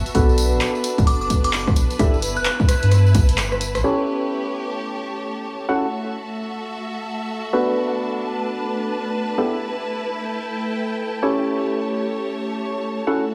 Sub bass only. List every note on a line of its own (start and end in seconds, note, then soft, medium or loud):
0.15 0.54 B1 loud
0.52 0.59 A1 medium
0.98 1.78 F#1 medium
1.76 1.87 B1 loud
1.99 2.38 G1 loud
2.37 2.44 E1 medium
2.83 3.14 G2 medium
3.15 3.30 B1 medium
3.29 3.77 G1 loud
3.75 3.82 B1 medium